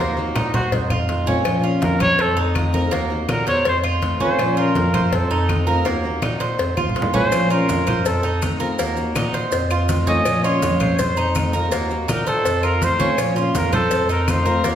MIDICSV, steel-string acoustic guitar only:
0, 0, Header, 1, 3, 480
1, 0, Start_track
1, 0, Tempo, 366300
1, 1908, Time_signature, 4, 2, 24, 8
1, 19328, End_track
2, 0, Start_track
2, 0, Title_t, "Steel-string acoustic guitar"
2, 0, Program_c, 0, 25
2, 0, Note_on_c, 0, 51, 67
2, 0, Note_on_c, 0, 58, 81
2, 0, Note_on_c, 0, 63, 75
2, 8, Note_on_c, 0, 66, 75
2, 203, Note_off_c, 0, 66, 0
2, 212, Note_off_c, 0, 51, 0
2, 219, Note_off_c, 0, 58, 0
2, 219, Note_off_c, 0, 63, 0
2, 219, Note_on_c, 0, 66, 73
2, 235, Note_on_c, 0, 63, 63
2, 251, Note_on_c, 0, 58, 62
2, 453, Note_off_c, 0, 66, 0
2, 459, Note_off_c, 0, 58, 0
2, 461, Note_off_c, 0, 63, 0
2, 466, Note_on_c, 0, 51, 55
2, 475, Note_on_c, 0, 58, 57
2, 486, Note_on_c, 0, 63, 59
2, 495, Note_on_c, 0, 66, 68
2, 933, Note_off_c, 0, 51, 0
2, 942, Note_off_c, 0, 58, 0
2, 947, Note_off_c, 0, 63, 0
2, 952, Note_off_c, 0, 66, 0
2, 1413, Note_on_c, 0, 51, 53
2, 1425, Note_on_c, 0, 57, 55
2, 1433, Note_on_c, 0, 60, 57
2, 1444, Note_on_c, 0, 65, 55
2, 1640, Note_off_c, 0, 65, 0
2, 1651, Note_off_c, 0, 51, 0
2, 1651, Note_off_c, 0, 60, 0
2, 1656, Note_on_c, 0, 65, 71
2, 1657, Note_off_c, 0, 57, 0
2, 1667, Note_on_c, 0, 60, 63
2, 1676, Note_on_c, 0, 57, 61
2, 1686, Note_on_c, 0, 51, 54
2, 1886, Note_off_c, 0, 51, 0
2, 1891, Note_on_c, 0, 53, 64
2, 1893, Note_off_c, 0, 65, 0
2, 1897, Note_off_c, 0, 57, 0
2, 1898, Note_off_c, 0, 60, 0
2, 1903, Note_on_c, 0, 58, 65
2, 1913, Note_on_c, 0, 61, 77
2, 1919, Note_on_c, 0, 65, 80
2, 2106, Note_off_c, 0, 65, 0
2, 2122, Note_on_c, 0, 65, 62
2, 2126, Note_off_c, 0, 61, 0
2, 2130, Note_off_c, 0, 53, 0
2, 2136, Note_off_c, 0, 58, 0
2, 2142, Note_on_c, 0, 61, 54
2, 2156, Note_on_c, 0, 58, 54
2, 2361, Note_off_c, 0, 58, 0
2, 2366, Note_off_c, 0, 65, 0
2, 2366, Note_on_c, 0, 53, 55
2, 2371, Note_off_c, 0, 61, 0
2, 2377, Note_on_c, 0, 58, 55
2, 2387, Note_on_c, 0, 61, 56
2, 2394, Note_on_c, 0, 65, 53
2, 2848, Note_off_c, 0, 53, 0
2, 2852, Note_off_c, 0, 65, 0
2, 2854, Note_off_c, 0, 58, 0
2, 2859, Note_off_c, 0, 61, 0
2, 3332, Note_on_c, 0, 51, 54
2, 3344, Note_on_c, 0, 57, 56
2, 3355, Note_on_c, 0, 60, 61
2, 3361, Note_on_c, 0, 65, 60
2, 3557, Note_off_c, 0, 65, 0
2, 3570, Note_off_c, 0, 60, 0
2, 3572, Note_off_c, 0, 51, 0
2, 3573, Note_on_c, 0, 65, 68
2, 3578, Note_off_c, 0, 57, 0
2, 3586, Note_on_c, 0, 60, 77
2, 3594, Note_on_c, 0, 57, 61
2, 3604, Note_on_c, 0, 51, 56
2, 3799, Note_off_c, 0, 51, 0
2, 3812, Note_off_c, 0, 65, 0
2, 3814, Note_on_c, 0, 51, 80
2, 3819, Note_off_c, 0, 60, 0
2, 3821, Note_off_c, 0, 57, 0
2, 3826, Note_on_c, 0, 58, 76
2, 3834, Note_on_c, 0, 63, 78
2, 3845, Note_on_c, 0, 66, 80
2, 4047, Note_off_c, 0, 66, 0
2, 4053, Note_off_c, 0, 51, 0
2, 4059, Note_off_c, 0, 58, 0
2, 4063, Note_off_c, 0, 63, 0
2, 4063, Note_on_c, 0, 66, 67
2, 4078, Note_on_c, 0, 63, 62
2, 4088, Note_on_c, 0, 58, 51
2, 4297, Note_off_c, 0, 58, 0
2, 4297, Note_off_c, 0, 66, 0
2, 4304, Note_on_c, 0, 51, 55
2, 4305, Note_off_c, 0, 63, 0
2, 4312, Note_on_c, 0, 58, 51
2, 4325, Note_on_c, 0, 63, 54
2, 4331, Note_on_c, 0, 66, 65
2, 4779, Note_off_c, 0, 51, 0
2, 4783, Note_off_c, 0, 58, 0
2, 4789, Note_off_c, 0, 63, 0
2, 4792, Note_off_c, 0, 66, 0
2, 5263, Note_on_c, 0, 51, 60
2, 5277, Note_on_c, 0, 57, 58
2, 5288, Note_on_c, 0, 60, 62
2, 5294, Note_on_c, 0, 65, 58
2, 5488, Note_off_c, 0, 65, 0
2, 5498, Note_off_c, 0, 51, 0
2, 5500, Note_off_c, 0, 60, 0
2, 5504, Note_on_c, 0, 65, 66
2, 5506, Note_off_c, 0, 57, 0
2, 5515, Note_on_c, 0, 60, 65
2, 5523, Note_on_c, 0, 57, 59
2, 5532, Note_on_c, 0, 51, 67
2, 5739, Note_off_c, 0, 65, 0
2, 5740, Note_off_c, 0, 51, 0
2, 5745, Note_off_c, 0, 60, 0
2, 5745, Note_on_c, 0, 53, 83
2, 5749, Note_off_c, 0, 57, 0
2, 5758, Note_on_c, 0, 58, 65
2, 5766, Note_on_c, 0, 61, 78
2, 5773, Note_on_c, 0, 65, 74
2, 5971, Note_off_c, 0, 65, 0
2, 5980, Note_off_c, 0, 53, 0
2, 5986, Note_off_c, 0, 58, 0
2, 5987, Note_on_c, 0, 65, 67
2, 5990, Note_off_c, 0, 61, 0
2, 6006, Note_on_c, 0, 61, 61
2, 6019, Note_on_c, 0, 58, 52
2, 6221, Note_off_c, 0, 65, 0
2, 6222, Note_off_c, 0, 58, 0
2, 6227, Note_on_c, 0, 53, 57
2, 6230, Note_off_c, 0, 61, 0
2, 6238, Note_on_c, 0, 58, 57
2, 6248, Note_on_c, 0, 61, 56
2, 6256, Note_on_c, 0, 65, 63
2, 6701, Note_off_c, 0, 53, 0
2, 6707, Note_off_c, 0, 58, 0
2, 6712, Note_off_c, 0, 61, 0
2, 6716, Note_off_c, 0, 65, 0
2, 7190, Note_on_c, 0, 51, 60
2, 7201, Note_on_c, 0, 57, 59
2, 7211, Note_on_c, 0, 60, 59
2, 7219, Note_on_c, 0, 65, 57
2, 7407, Note_off_c, 0, 65, 0
2, 7423, Note_off_c, 0, 51, 0
2, 7423, Note_off_c, 0, 60, 0
2, 7423, Note_on_c, 0, 65, 75
2, 7429, Note_off_c, 0, 57, 0
2, 7438, Note_on_c, 0, 60, 69
2, 7448, Note_on_c, 0, 57, 66
2, 7452, Note_on_c, 0, 51, 55
2, 7648, Note_off_c, 0, 51, 0
2, 7660, Note_off_c, 0, 65, 0
2, 7664, Note_on_c, 0, 51, 68
2, 7668, Note_off_c, 0, 60, 0
2, 7673, Note_off_c, 0, 57, 0
2, 7679, Note_on_c, 0, 58, 77
2, 7684, Note_on_c, 0, 63, 72
2, 7695, Note_on_c, 0, 66, 82
2, 7895, Note_off_c, 0, 66, 0
2, 7901, Note_off_c, 0, 51, 0
2, 7908, Note_off_c, 0, 58, 0
2, 7910, Note_on_c, 0, 66, 66
2, 7911, Note_off_c, 0, 63, 0
2, 7925, Note_on_c, 0, 63, 59
2, 7937, Note_on_c, 0, 58, 59
2, 8143, Note_off_c, 0, 58, 0
2, 8144, Note_off_c, 0, 66, 0
2, 8150, Note_on_c, 0, 51, 59
2, 8151, Note_off_c, 0, 63, 0
2, 8159, Note_on_c, 0, 58, 54
2, 8167, Note_on_c, 0, 63, 58
2, 8175, Note_on_c, 0, 66, 55
2, 8619, Note_off_c, 0, 51, 0
2, 8629, Note_off_c, 0, 58, 0
2, 8633, Note_off_c, 0, 63, 0
2, 8637, Note_off_c, 0, 66, 0
2, 9105, Note_on_c, 0, 51, 52
2, 9114, Note_on_c, 0, 57, 58
2, 9121, Note_on_c, 0, 60, 65
2, 9132, Note_on_c, 0, 65, 59
2, 9330, Note_off_c, 0, 65, 0
2, 9342, Note_off_c, 0, 51, 0
2, 9342, Note_off_c, 0, 60, 0
2, 9346, Note_off_c, 0, 57, 0
2, 9346, Note_on_c, 0, 65, 77
2, 9357, Note_on_c, 0, 60, 66
2, 9369, Note_on_c, 0, 57, 60
2, 9374, Note_on_c, 0, 51, 51
2, 9576, Note_off_c, 0, 51, 0
2, 9581, Note_on_c, 0, 53, 70
2, 9582, Note_off_c, 0, 65, 0
2, 9585, Note_off_c, 0, 57, 0
2, 9588, Note_off_c, 0, 60, 0
2, 9591, Note_on_c, 0, 58, 72
2, 9598, Note_on_c, 0, 61, 81
2, 9609, Note_on_c, 0, 65, 69
2, 9807, Note_off_c, 0, 65, 0
2, 9820, Note_off_c, 0, 53, 0
2, 9823, Note_on_c, 0, 65, 70
2, 9825, Note_off_c, 0, 58, 0
2, 9829, Note_off_c, 0, 61, 0
2, 9843, Note_on_c, 0, 61, 64
2, 9852, Note_on_c, 0, 58, 50
2, 10061, Note_off_c, 0, 65, 0
2, 10065, Note_off_c, 0, 58, 0
2, 10071, Note_off_c, 0, 61, 0
2, 10071, Note_on_c, 0, 53, 58
2, 10081, Note_on_c, 0, 58, 57
2, 10091, Note_on_c, 0, 61, 61
2, 10103, Note_on_c, 0, 65, 62
2, 10546, Note_off_c, 0, 53, 0
2, 10551, Note_off_c, 0, 58, 0
2, 10552, Note_off_c, 0, 65, 0
2, 10556, Note_off_c, 0, 61, 0
2, 11026, Note_on_c, 0, 51, 51
2, 11038, Note_on_c, 0, 57, 56
2, 11046, Note_on_c, 0, 60, 60
2, 11057, Note_on_c, 0, 65, 56
2, 11252, Note_off_c, 0, 65, 0
2, 11263, Note_off_c, 0, 51, 0
2, 11263, Note_off_c, 0, 60, 0
2, 11267, Note_on_c, 0, 65, 77
2, 11269, Note_off_c, 0, 57, 0
2, 11278, Note_on_c, 0, 60, 69
2, 11288, Note_on_c, 0, 57, 67
2, 11295, Note_on_c, 0, 51, 53
2, 11494, Note_off_c, 0, 51, 0
2, 11504, Note_off_c, 0, 65, 0
2, 11510, Note_off_c, 0, 60, 0
2, 11510, Note_on_c, 0, 51, 75
2, 11514, Note_off_c, 0, 57, 0
2, 11524, Note_on_c, 0, 58, 72
2, 11529, Note_on_c, 0, 63, 77
2, 11537, Note_on_c, 0, 66, 85
2, 11733, Note_off_c, 0, 66, 0
2, 11745, Note_off_c, 0, 51, 0
2, 11748, Note_off_c, 0, 63, 0
2, 11749, Note_on_c, 0, 66, 64
2, 11752, Note_off_c, 0, 58, 0
2, 11764, Note_on_c, 0, 63, 58
2, 11780, Note_on_c, 0, 58, 53
2, 11985, Note_off_c, 0, 66, 0
2, 11992, Note_off_c, 0, 63, 0
2, 11995, Note_off_c, 0, 58, 0
2, 12000, Note_on_c, 0, 51, 59
2, 12010, Note_on_c, 0, 58, 58
2, 12019, Note_on_c, 0, 63, 59
2, 12027, Note_on_c, 0, 66, 62
2, 12466, Note_off_c, 0, 51, 0
2, 12476, Note_off_c, 0, 58, 0
2, 12480, Note_off_c, 0, 63, 0
2, 12484, Note_off_c, 0, 66, 0
2, 12951, Note_on_c, 0, 51, 51
2, 12964, Note_on_c, 0, 57, 51
2, 12975, Note_on_c, 0, 60, 55
2, 12981, Note_on_c, 0, 65, 65
2, 13174, Note_off_c, 0, 65, 0
2, 13186, Note_off_c, 0, 51, 0
2, 13186, Note_off_c, 0, 60, 0
2, 13190, Note_on_c, 0, 65, 77
2, 13192, Note_off_c, 0, 57, 0
2, 13201, Note_on_c, 0, 60, 63
2, 13208, Note_on_c, 0, 57, 73
2, 13219, Note_on_c, 0, 51, 61
2, 13425, Note_off_c, 0, 65, 0
2, 13430, Note_off_c, 0, 51, 0
2, 13431, Note_off_c, 0, 60, 0
2, 13435, Note_off_c, 0, 57, 0
2, 13435, Note_on_c, 0, 53, 66
2, 13447, Note_on_c, 0, 58, 67
2, 13455, Note_on_c, 0, 61, 75
2, 13463, Note_on_c, 0, 65, 73
2, 13657, Note_off_c, 0, 65, 0
2, 13668, Note_off_c, 0, 53, 0
2, 13672, Note_on_c, 0, 65, 67
2, 13674, Note_off_c, 0, 58, 0
2, 13678, Note_off_c, 0, 61, 0
2, 13691, Note_on_c, 0, 61, 59
2, 13702, Note_on_c, 0, 58, 54
2, 13907, Note_off_c, 0, 58, 0
2, 13907, Note_off_c, 0, 65, 0
2, 13911, Note_on_c, 0, 53, 64
2, 13916, Note_off_c, 0, 61, 0
2, 13923, Note_on_c, 0, 58, 52
2, 13929, Note_on_c, 0, 61, 59
2, 13941, Note_on_c, 0, 65, 68
2, 14386, Note_off_c, 0, 53, 0
2, 14391, Note_off_c, 0, 58, 0
2, 14394, Note_off_c, 0, 61, 0
2, 14396, Note_off_c, 0, 65, 0
2, 14868, Note_on_c, 0, 51, 51
2, 14882, Note_on_c, 0, 57, 55
2, 14888, Note_on_c, 0, 60, 52
2, 14898, Note_on_c, 0, 65, 61
2, 15094, Note_off_c, 0, 65, 0
2, 15104, Note_off_c, 0, 51, 0
2, 15106, Note_off_c, 0, 60, 0
2, 15110, Note_off_c, 0, 57, 0
2, 15110, Note_on_c, 0, 65, 73
2, 15122, Note_on_c, 0, 60, 58
2, 15129, Note_on_c, 0, 57, 66
2, 15137, Note_on_c, 0, 51, 56
2, 15330, Note_off_c, 0, 51, 0
2, 15345, Note_off_c, 0, 65, 0
2, 15345, Note_on_c, 0, 51, 66
2, 15350, Note_off_c, 0, 57, 0
2, 15351, Note_off_c, 0, 60, 0
2, 15356, Note_on_c, 0, 58, 81
2, 15368, Note_on_c, 0, 63, 75
2, 15374, Note_on_c, 0, 66, 80
2, 15569, Note_off_c, 0, 66, 0
2, 15582, Note_off_c, 0, 51, 0
2, 15584, Note_on_c, 0, 66, 65
2, 15585, Note_off_c, 0, 63, 0
2, 15587, Note_off_c, 0, 58, 0
2, 15601, Note_on_c, 0, 63, 60
2, 15612, Note_on_c, 0, 58, 60
2, 15820, Note_off_c, 0, 58, 0
2, 15821, Note_off_c, 0, 66, 0
2, 15825, Note_on_c, 0, 51, 52
2, 15830, Note_off_c, 0, 63, 0
2, 15835, Note_on_c, 0, 58, 53
2, 15846, Note_on_c, 0, 63, 65
2, 15855, Note_on_c, 0, 66, 64
2, 16301, Note_off_c, 0, 51, 0
2, 16306, Note_off_c, 0, 58, 0
2, 16311, Note_off_c, 0, 63, 0
2, 16316, Note_off_c, 0, 66, 0
2, 16785, Note_on_c, 0, 51, 58
2, 16798, Note_on_c, 0, 57, 56
2, 16808, Note_on_c, 0, 60, 63
2, 16814, Note_on_c, 0, 65, 68
2, 17002, Note_off_c, 0, 65, 0
2, 17018, Note_off_c, 0, 60, 0
2, 17018, Note_on_c, 0, 65, 73
2, 17020, Note_off_c, 0, 51, 0
2, 17021, Note_off_c, 0, 57, 0
2, 17033, Note_on_c, 0, 60, 65
2, 17037, Note_on_c, 0, 57, 67
2, 17046, Note_on_c, 0, 51, 56
2, 17251, Note_off_c, 0, 51, 0
2, 17256, Note_off_c, 0, 65, 0
2, 17256, Note_on_c, 0, 53, 67
2, 17264, Note_off_c, 0, 57, 0
2, 17264, Note_off_c, 0, 60, 0
2, 17270, Note_on_c, 0, 58, 79
2, 17277, Note_on_c, 0, 61, 73
2, 17288, Note_on_c, 0, 65, 79
2, 17482, Note_off_c, 0, 65, 0
2, 17495, Note_off_c, 0, 53, 0
2, 17497, Note_on_c, 0, 65, 62
2, 17498, Note_off_c, 0, 61, 0
2, 17502, Note_off_c, 0, 58, 0
2, 17513, Note_on_c, 0, 61, 55
2, 17528, Note_on_c, 0, 58, 54
2, 17730, Note_off_c, 0, 58, 0
2, 17735, Note_off_c, 0, 65, 0
2, 17735, Note_on_c, 0, 53, 52
2, 17737, Note_off_c, 0, 61, 0
2, 17746, Note_on_c, 0, 58, 63
2, 17753, Note_on_c, 0, 61, 61
2, 17766, Note_on_c, 0, 65, 64
2, 18213, Note_off_c, 0, 53, 0
2, 18219, Note_off_c, 0, 58, 0
2, 18222, Note_off_c, 0, 61, 0
2, 18223, Note_off_c, 0, 65, 0
2, 18697, Note_on_c, 0, 51, 51
2, 18712, Note_on_c, 0, 57, 61
2, 18720, Note_on_c, 0, 60, 55
2, 18728, Note_on_c, 0, 65, 62
2, 18923, Note_off_c, 0, 65, 0
2, 18933, Note_off_c, 0, 51, 0
2, 18936, Note_off_c, 0, 60, 0
2, 18939, Note_on_c, 0, 65, 68
2, 18941, Note_off_c, 0, 57, 0
2, 18952, Note_on_c, 0, 60, 66
2, 18962, Note_on_c, 0, 57, 63
2, 18971, Note_on_c, 0, 51, 62
2, 19163, Note_off_c, 0, 51, 0
2, 19174, Note_off_c, 0, 65, 0
2, 19178, Note_on_c, 0, 51, 82
2, 19181, Note_off_c, 0, 60, 0
2, 19184, Note_off_c, 0, 57, 0
2, 19190, Note_on_c, 0, 58, 74
2, 19197, Note_on_c, 0, 63, 72
2, 19206, Note_on_c, 0, 66, 81
2, 19328, Note_off_c, 0, 51, 0
2, 19328, Note_off_c, 0, 58, 0
2, 19328, Note_off_c, 0, 63, 0
2, 19328, Note_off_c, 0, 66, 0
2, 19328, End_track
3, 0, Start_track
3, 0, Title_t, "Muted steel-string acoustic guitar strokes"
3, 945, Note_on_c, 9, 29, 58
3, 1076, Note_off_c, 9, 29, 0
3, 2859, Note_on_c, 9, 29, 65
3, 2990, Note_off_c, 9, 29, 0
3, 4790, Note_on_c, 9, 29, 64
3, 4921, Note_off_c, 9, 29, 0
3, 6715, Note_on_c, 9, 29, 69
3, 6846, Note_off_c, 9, 29, 0
3, 8630, Note_on_c, 9, 29, 60
3, 8761, Note_off_c, 9, 29, 0
3, 10551, Note_on_c, 9, 29, 70
3, 10682, Note_off_c, 9, 29, 0
3, 12478, Note_on_c, 9, 29, 71
3, 12609, Note_off_c, 9, 29, 0
3, 14397, Note_on_c, 9, 29, 73
3, 14528, Note_off_c, 9, 29, 0
3, 16317, Note_on_c, 9, 29, 65
3, 16448, Note_off_c, 9, 29, 0
3, 18223, Note_on_c, 9, 29, 65
3, 18354, Note_off_c, 9, 29, 0
3, 19328, End_track
0, 0, End_of_file